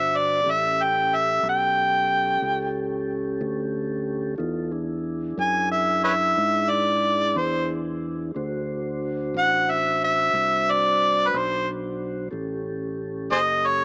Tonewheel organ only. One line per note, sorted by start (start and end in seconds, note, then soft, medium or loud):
0.00 0.41 D4 medium
0.00 0.41 F#4 medium
0.00 0.41 C5 medium
0.43 4.35 C#4 medium
0.43 4.35 G4 medium
0.43 4.35 A4 medium
4.38 4.72 D#4 medium
4.38 4.72 F4 medium
4.38 4.72 A4 soft
4.71 8.31 D4 soft
4.71 8.31 E4 soft
4.71 8.31 G#4 medium
8.35 12.28 D4 medium
8.35 12.29 F#4 medium
8.35 12.28 C5 medium
12.31 13.85 C#4 medium
12.31 13.85 G4 medium
12.31 13.85 A4 medium